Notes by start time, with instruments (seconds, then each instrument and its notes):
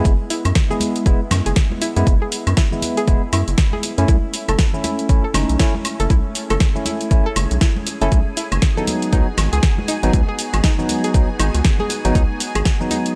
Already playing: tine electric piano G#3 B3 E4, analog synth pad G#3 B3 E4
0.04 analog synth bass F#1, kick, closed hi-hat, high conga, shaker
0.30 synth arpeggio sound E4, open hi-hat, high bongo, shaker
0.45 analog synth bass F#2, closed hi-hat, high bongo, high conga, high woodblock, shaker
0.55 kick, snare, closed hi-hat, shaker
0.70 tine electric piano G#3 B3 E4, synth arpeggio sound G#4, low conga, shaker
0.80 open hi-hat, high conga, shaker
0.96 closed hi-hat, shaker
1.06 analog synth bass E1, tine electric piano G#3 B3 E4, synth arpeggio sound E4, kick, closed hi-hat, shaker
1.31 analog synth bass F#2, snare, open hi-hat, high bongo, high conga, high woodblock, shaker
1.46 analog synth bass F#1, synth arpeggio sound G#4, closed hi-hat, shaker
1.56 kick, snare, closed hi-hat, shaker
1.71 high conga
1.82 synth arpeggio sound E4, open hi-hat, high bongo, shaker
1.96 analog synth bass F#2, tine electric piano G#3 B3 E4, closed hi-hat, shaker
2.07 analog synth bass F#1, kick, closed hi-hat, high conga, shaker
2.22 synth arpeggio sound G#4
2.32 open hi-hat, shaker
2.47 analog synth bass F#2, closed hi-hat, high bongo, high conga, high woodblock, shaker
2.57 synth arpeggio sound E4, kick, snare, closed hi-hat, shaker
2.72 tine electric piano G#3 B3 E4, low conga, shaker
2.82 open hi-hat, high conga, shaker
2.97 synth arpeggio sound G#4, closed hi-hat, shaker
3.07 analog synth bass E1, tine electric piano G#3 B3 E4, kick, closed hi-hat, shaker
3.33 analog synth bass F#2, synth arpeggio sound E4, open hi-hat, high bongo, high conga, high woodblock, shaker
3.48 analog synth bass F#1, closed hi-hat, shaker
3.58 kick, snare, closed hi-hat, shaker
3.73 synth arpeggio sound G#4, high conga
3.83 open hi-hat, high bongo, shaker
3.98 analog synth bass F#2, tine electric piano A3 C#4 E4, closed hi-hat, shaker
4.08 analog synth bass B1, analog synth pad A3 C#4, synth arpeggio sound E4, kick, closed hi-hat, high conga, shaker
4.33 open hi-hat, high bongo, shaker
4.48 analog synth bass F#1, synth arpeggio sound A4, closed hi-hat, high bongo, high conga, high woodblock, shaker
4.59 kick, snare, closed hi-hat, shaker
4.74 tine electric piano A3 C#4 E4, low conga, shaker
4.84 synth arpeggio sound E4, open hi-hat, high conga, shaker
4.99 closed hi-hat, shaker
5.09 analog synth bass A1, tine electric piano A3 C#4 E4, kick, closed hi-hat, shaker
5.24 synth arpeggio sound A4
5.34 analog synth bass F#1, tine electric piano A3 C#4 D#4, snare, open hi-hat, high bongo, high conga, high woodblock, shaker
5.49 analog synth bass B1, closed hi-hat, shaker
5.59 tine electric piano A3 C#4 E4, synth arpeggio sound E4, kick, snare, closed hi-hat, shaker
5.75 high conga
5.85 open hi-hat, high bongo, high woodblock, shaker
6.00 analog synth bass F#1, synth arpeggio sound A4, closed hi-hat, shaker
6.10 analog synth bass B1, synth arpeggio sound E4, string machine G#4 G#5, kick, closed hi-hat, high conga, shaker
6.35 open hi-hat, shaker
6.50 analog synth bass F#1, synth arpeggio sound A4, closed hi-hat, high bongo, high conga, high woodblock, shaker
6.60 kick, snare, closed hi-hat, shaker
6.75 tine electric piano A3 C#4 E4, low conga, shaker
6.86 synth arpeggio sound E4, open hi-hat, high conga, shaker
7.01 closed hi-hat, shaker
7.11 analog synth bass A1, tine electric piano A3 C#4 E4, kick, closed hi-hat, shaker
7.26 synth arpeggio sound A4
7.36 analog synth bass F#1, open hi-hat, high bongo, high conga, high woodblock, shaker
7.51 analog synth bass B1, closed hi-hat, shaker
7.61 synth arpeggio sound E4, kick, snare, closed hi-hat, shaker
7.77 high conga
7.87 open hi-hat, high bongo, shaker
8.01 analog synth bass F#1, tine electric piano A3 C#4 E4, synth arpeggio sound A4, closed hi-hat, shaker
8.12 analog synth bass B1, kick, closed hi-hat, high conga, shaker
8.37 synth arpeggio sound E4, open hi-hat, high bongo, shaker
8.52 analog synth bass F#1, closed hi-hat, high bongo, high conga, high woodblock, shaker
8.62 kick, snare, closed hi-hat, shaker
8.77 tine electric piano F#3 B3 D#4, synth arpeggio sound A4, low conga, shaker
8.87 analog synth pad B3 D#4 F#4, open hi-hat, high conga, shaker
9.02 closed hi-hat, shaker
9.13 analog synth bass C#2, tine electric piano F#3 B3 D#4, synth arpeggio sound D#4, kick, closed hi-hat, shaker
9.38 analog synth bass G#1, snare, open hi-hat, high bongo, high conga, high woodblock, shaker
9.53 analog synth bass C#2, synth arpeggio sound G#4, closed hi-hat, shaker
9.63 kick, snare, closed hi-hat, shaker
9.78 high conga
9.88 synth arpeggio sound D#4, open hi-hat, high bongo, shaker
10.03 analog synth bass G#1, tine electric piano F#3 B3 D#4, closed hi-hat, shaker
10.13 analog synth bass C#2, kick, closed hi-hat, high conga, shaker
10.28 synth arpeggio sound G#4
10.39 open hi-hat, shaker
10.53 analog synth bass G#1, closed hi-hat, high bongo, high conga, high woodblock, shaker
10.64 synth arpeggio sound D#4, kick, snare, closed hi-hat, shaker
10.79 tine electric piano F#3 B3 D#4, low conga, shaker
10.89 open hi-hat, high conga, shaker
11.04 synth arpeggio sound G#4, closed hi-hat, shaker
11.14 analog synth bass B1, tine electric piano F#3 B3 D#4, kick, closed hi-hat, shaker
11.39 analog synth bass G#1, synth arpeggio sound D#4, open hi-hat, high bongo, high conga, high woodblock, shaker
11.54 analog synth bass C#2, closed hi-hat, shaker
11.65 kick, snare, closed hi-hat, shaker
11.79 synth arpeggio sound G#4, high conga
11.89 open hi-hat, high bongo, shaker
12.05 analog synth bass G#1, tine electric piano F#3 B3 D#4, closed hi-hat, shaker
12.15 analog synth bass C#2, synth arpeggio sound D#4, kick, closed hi-hat, high conga, shaker
12.40 open hi-hat, high bongo, shaker
12.55 analog synth bass G#1, synth arpeggio sound G#4, closed hi-hat, high bongo, high conga, high woodblock, shaker
12.65 kick, snare, closed hi-hat, shaker
12.80 tine electric piano F#3 B3 D#4, low conga, shaker
12.91 synth arpeggio sound D#4, open hi-hat, high conga, shaker
13.06 closed hi-hat, shaker